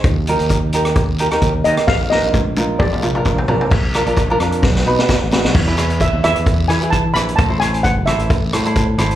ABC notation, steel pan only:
X:1
M:4/4
L:1/8
Q:"Swing 16ths" 1/4=131
K:Bbmix
V:1 name="Steel pan"
c2 z4 z e | f e3 d2 z2 | z8 | [K:E] z2 e e2 g a b |
a g f e4 z |]